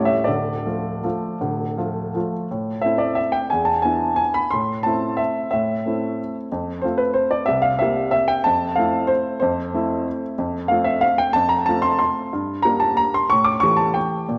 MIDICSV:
0, 0, Header, 1, 2, 480
1, 0, Start_track
1, 0, Tempo, 376176
1, 351, Time_signature, 3, 2, 24, 8
1, 2750, Tempo, 342270
1, 4670, Tempo, 331309
1, 9950, Tempo, 320684
1, 15230, Tempo, 326442
1, 20653, End_track
2, 0, Start_track
2, 0, Title_t, "Upright piano"
2, 0, Program_c, 0, 0
2, 0, Note_on_c, 0, 33, 52
2, 0, Note_on_c, 0, 45, 48
2, 0, Note_on_c, 0, 55, 38
2, 0, Note_on_c, 0, 57, 38
2, 0, Note_on_c, 0, 64, 36
2, 68, Note_on_c, 0, 76, 72
2, 128, Control_c, 0, 64, 127
2, 297, Note_off_c, 0, 55, 0
2, 302, Note_off_c, 0, 57, 0
2, 307, Note_off_c, 0, 64, 0
2, 308, Note_on_c, 0, 74, 66
2, 330, Note_off_c, 0, 76, 0
2, 331, Note_off_c, 0, 45, 0
2, 332, Note_off_c, 0, 33, 0
2, 340, Note_on_c, 0, 38, 49
2, 341, Note_on_c, 0, 26, 46
2, 363, Control_c, 0, 64, 0
2, 651, Control_c, 0, 64, 127
2, 816, Note_off_c, 0, 26, 0
2, 816, Note_off_c, 0, 38, 0
2, 838, Note_on_c, 0, 53, 38
2, 843, Note_on_c, 0, 57, 37
2, 846, Note_on_c, 0, 65, 41
2, 1277, Note_off_c, 0, 53, 0
2, 1280, Note_off_c, 0, 57, 0
2, 1282, Note_off_c, 0, 65, 0
2, 1321, Note_on_c, 0, 53, 37
2, 1326, Note_on_c, 0, 57, 40
2, 1330, Note_on_c, 0, 65, 41
2, 1347, Control_c, 0, 64, 0
2, 1750, Note_off_c, 0, 53, 0
2, 1753, Note_off_c, 0, 57, 0
2, 1755, Note_off_c, 0, 65, 0
2, 1795, Note_on_c, 0, 26, 45
2, 1797, Note_on_c, 0, 38, 52
2, 2085, Control_c, 0, 64, 127
2, 2259, Note_off_c, 0, 26, 0
2, 2260, Note_off_c, 0, 38, 0
2, 2266, Note_on_c, 0, 53, 38
2, 2274, Note_on_c, 0, 57, 37
2, 2278, Note_on_c, 0, 65, 41
2, 2698, Note_off_c, 0, 53, 0
2, 2702, Note_off_c, 0, 57, 0
2, 2704, Note_off_c, 0, 65, 0
2, 2740, Note_on_c, 0, 53, 39
2, 2746, Note_on_c, 0, 57, 38
2, 2753, Note_on_c, 0, 65, 42
2, 2763, Control_c, 0, 64, 0
2, 2985, Note_off_c, 0, 74, 0
2, 3195, Note_off_c, 0, 53, 0
2, 3199, Note_off_c, 0, 57, 0
2, 3203, Note_off_c, 0, 65, 0
2, 3248, Note_on_c, 0, 45, 54
2, 3495, Control_c, 0, 64, 127
2, 3676, Note_on_c, 0, 76, 73
2, 3700, Note_off_c, 0, 45, 0
2, 3710, Note_on_c, 0, 57, 38
2, 3715, Note_on_c, 0, 60, 40
2, 3724, Note_on_c, 0, 64, 42
2, 3909, Note_on_c, 0, 74, 67
2, 3937, Note_off_c, 0, 76, 0
2, 4149, Note_on_c, 0, 76, 74
2, 4176, Note_off_c, 0, 74, 0
2, 4211, Control_c, 0, 64, 0
2, 4385, Note_on_c, 0, 79, 72
2, 4414, Note_off_c, 0, 76, 0
2, 4611, Note_off_c, 0, 57, 0
2, 4614, Note_off_c, 0, 60, 0
2, 4618, Note_off_c, 0, 64, 0
2, 4636, Note_on_c, 0, 80, 72
2, 4643, Note_off_c, 0, 79, 0
2, 4670, Note_on_c, 0, 40, 50
2, 4853, Note_on_c, 0, 81, 71
2, 4888, Note_off_c, 0, 80, 0
2, 4924, Control_c, 0, 64, 127
2, 5101, Note_on_c, 0, 80, 69
2, 5118, Note_off_c, 0, 81, 0
2, 5131, Note_off_c, 0, 40, 0
2, 5136, Note_on_c, 0, 59, 39
2, 5143, Note_on_c, 0, 62, 39
2, 5145, Note_on_c, 0, 64, 41
2, 5571, Note_off_c, 0, 80, 0
2, 5593, Note_on_c, 0, 80, 75
2, 5655, Control_c, 0, 64, 0
2, 5855, Note_on_c, 0, 83, 77
2, 5859, Note_off_c, 0, 80, 0
2, 6055, Note_off_c, 0, 59, 0
2, 6058, Note_off_c, 0, 62, 0
2, 6059, Note_off_c, 0, 64, 0
2, 6092, Note_on_c, 0, 84, 77
2, 6105, Note_off_c, 0, 83, 0
2, 6131, Note_on_c, 0, 45, 51
2, 6381, Control_c, 0, 64, 127
2, 6564, Note_on_c, 0, 81, 72
2, 6581, Note_off_c, 0, 84, 0
2, 6586, Note_off_c, 0, 45, 0
2, 6600, Note_on_c, 0, 57, 39
2, 6609, Note_on_c, 0, 60, 37
2, 6610, Note_on_c, 0, 64, 40
2, 7052, Note_on_c, 0, 76, 68
2, 7068, Note_off_c, 0, 81, 0
2, 7103, Control_c, 0, 64, 0
2, 7514, Note_off_c, 0, 57, 0
2, 7519, Note_off_c, 0, 60, 0
2, 7520, Note_off_c, 0, 64, 0
2, 7522, Note_off_c, 0, 76, 0
2, 7543, Note_on_c, 0, 76, 66
2, 7578, Note_on_c, 0, 45, 53
2, 7867, Control_c, 0, 64, 127
2, 8032, Note_off_c, 0, 45, 0
2, 8052, Note_on_c, 0, 57, 40
2, 8058, Note_on_c, 0, 60, 37
2, 8067, Note_on_c, 0, 64, 42
2, 8542, Control_c, 0, 64, 0
2, 8754, Note_off_c, 0, 76, 0
2, 8947, Note_off_c, 0, 57, 0
2, 8950, Note_off_c, 0, 60, 0
2, 8955, Note_off_c, 0, 64, 0
2, 9008, Note_on_c, 0, 41, 51
2, 9247, Control_c, 0, 64, 127
2, 9438, Note_on_c, 0, 72, 68
2, 9457, Note_off_c, 0, 41, 0
2, 9469, Note_on_c, 0, 57, 37
2, 9480, Control_c, 0, 64, 0
2, 9481, Note_on_c, 0, 60, 38
2, 9485, Note_on_c, 0, 65, 44
2, 9671, Note_on_c, 0, 71, 71
2, 9692, Note_off_c, 0, 72, 0
2, 9903, Note_on_c, 0, 72, 76
2, 9931, Note_off_c, 0, 71, 0
2, 10155, Note_on_c, 0, 74, 71
2, 10170, Note_off_c, 0, 72, 0
2, 10370, Note_off_c, 0, 57, 0
2, 10376, Note_off_c, 0, 60, 0
2, 10378, Note_off_c, 0, 65, 0
2, 10381, Note_on_c, 0, 76, 79
2, 10409, Note_off_c, 0, 74, 0
2, 10419, Note_on_c, 0, 36, 50
2, 10623, Note_on_c, 0, 77, 76
2, 10639, Note_off_c, 0, 76, 0
2, 10726, Control_c, 0, 64, 127
2, 10875, Note_on_c, 0, 76, 74
2, 10886, Note_off_c, 0, 77, 0
2, 10887, Note_off_c, 0, 36, 0
2, 10909, Note_on_c, 0, 58, 40
2, 10915, Note_on_c, 0, 60, 39
2, 10921, Note_on_c, 0, 67, 44
2, 11340, Note_off_c, 0, 76, 0
2, 11362, Note_on_c, 0, 76, 80
2, 11415, Control_c, 0, 64, 0
2, 11610, Note_on_c, 0, 79, 80
2, 11624, Note_off_c, 0, 76, 0
2, 11820, Note_off_c, 0, 58, 0
2, 11823, Note_off_c, 0, 60, 0
2, 11826, Note_off_c, 0, 67, 0
2, 11852, Note_on_c, 0, 81, 87
2, 11862, Note_off_c, 0, 79, 0
2, 11883, Note_on_c, 0, 41, 53
2, 12165, Control_c, 0, 64, 127
2, 12324, Note_on_c, 0, 77, 75
2, 12332, Note_off_c, 0, 81, 0
2, 12334, Note_off_c, 0, 41, 0
2, 12352, Note_on_c, 0, 57, 42
2, 12365, Note_on_c, 0, 60, 43
2, 12374, Note_on_c, 0, 64, 47
2, 12800, Note_on_c, 0, 72, 76
2, 12820, Note_off_c, 0, 77, 0
2, 12854, Control_c, 0, 64, 0
2, 13256, Note_off_c, 0, 57, 0
2, 13262, Note_off_c, 0, 60, 0
2, 13262, Note_off_c, 0, 72, 0
2, 13267, Note_off_c, 0, 64, 0
2, 13284, Note_on_c, 0, 72, 74
2, 13321, Note_on_c, 0, 41, 60
2, 13558, Control_c, 0, 64, 127
2, 13777, Note_off_c, 0, 41, 0
2, 13798, Note_on_c, 0, 57, 42
2, 13806, Note_on_c, 0, 60, 44
2, 13813, Note_on_c, 0, 64, 49
2, 14295, Control_c, 0, 64, 0
2, 14505, Note_off_c, 0, 72, 0
2, 14700, Note_off_c, 0, 57, 0
2, 14704, Note_off_c, 0, 60, 0
2, 14707, Note_off_c, 0, 64, 0
2, 14762, Note_on_c, 0, 41, 58
2, 15014, Control_c, 0, 64, 127
2, 15209, Note_on_c, 0, 77, 77
2, 15219, Note_off_c, 0, 41, 0
2, 15243, Note_on_c, 0, 57, 45
2, 15248, Note_on_c, 0, 60, 43
2, 15256, Note_on_c, 0, 65, 48
2, 15448, Note_on_c, 0, 76, 75
2, 15458, Note_off_c, 0, 77, 0
2, 15692, Note_on_c, 0, 77, 86
2, 15701, Note_off_c, 0, 76, 0
2, 15732, Control_c, 0, 64, 0
2, 15944, Note_off_c, 0, 77, 0
2, 15945, Note_on_c, 0, 79, 86
2, 16136, Note_off_c, 0, 57, 0
2, 16138, Note_off_c, 0, 60, 0
2, 16142, Note_off_c, 0, 65, 0
2, 16164, Note_on_c, 0, 81, 95
2, 16183, Note_off_c, 0, 79, 0
2, 16199, Note_on_c, 0, 41, 59
2, 16395, Note_on_c, 0, 82, 83
2, 16409, Note_off_c, 0, 81, 0
2, 16466, Control_c, 0, 64, 127
2, 16644, Note_on_c, 0, 81, 90
2, 16647, Note_off_c, 0, 82, 0
2, 16653, Note_off_c, 0, 41, 0
2, 16676, Note_on_c, 0, 57, 43
2, 16684, Note_on_c, 0, 60, 42
2, 16687, Note_on_c, 0, 65, 47
2, 16880, Note_on_c, 0, 84, 90
2, 16896, Note_off_c, 0, 81, 0
2, 17105, Note_off_c, 0, 84, 0
2, 17127, Note_on_c, 0, 84, 78
2, 17167, Control_c, 0, 64, 0
2, 17579, Note_off_c, 0, 57, 0
2, 17583, Note_off_c, 0, 60, 0
2, 17584, Note_off_c, 0, 65, 0
2, 17618, Note_off_c, 0, 84, 0
2, 17634, Note_on_c, 0, 43, 59
2, 17913, Control_c, 0, 64, 127
2, 18066, Note_on_c, 0, 82, 84
2, 18094, Note_off_c, 0, 43, 0
2, 18102, Note_on_c, 0, 55, 45
2, 18107, Note_on_c, 0, 58, 41
2, 18114, Note_on_c, 0, 62, 45
2, 18320, Note_on_c, 0, 81, 79
2, 18332, Note_off_c, 0, 82, 0
2, 18572, Note_on_c, 0, 82, 84
2, 18585, Note_off_c, 0, 81, 0
2, 18613, Control_c, 0, 64, 0
2, 18828, Note_on_c, 0, 84, 85
2, 18830, Note_off_c, 0, 82, 0
2, 19012, Note_off_c, 0, 55, 0
2, 19015, Note_off_c, 0, 58, 0
2, 19019, Note_off_c, 0, 62, 0
2, 19053, Note_on_c, 0, 85, 90
2, 19065, Note_off_c, 0, 84, 0
2, 19091, Note_on_c, 0, 45, 55
2, 19271, Note_on_c, 0, 86, 87
2, 19288, Note_off_c, 0, 85, 0
2, 19336, Control_c, 0, 64, 127
2, 19502, Note_on_c, 0, 85, 86
2, 19520, Note_off_c, 0, 86, 0
2, 19529, Note_off_c, 0, 45, 0
2, 19543, Note_on_c, 0, 52, 41
2, 19546, Note_on_c, 0, 57, 42
2, 19547, Note_on_c, 0, 67, 47
2, 19744, Note_on_c, 0, 81, 77
2, 19764, Note_off_c, 0, 85, 0
2, 19997, Note_on_c, 0, 79, 67
2, 20012, Note_off_c, 0, 81, 0
2, 20049, Control_c, 0, 64, 0
2, 20459, Note_off_c, 0, 52, 0
2, 20461, Note_off_c, 0, 57, 0
2, 20461, Note_off_c, 0, 67, 0
2, 20497, Note_off_c, 0, 79, 0
2, 20507, Note_on_c, 0, 46, 54
2, 20653, Note_off_c, 0, 46, 0
2, 20653, End_track
0, 0, End_of_file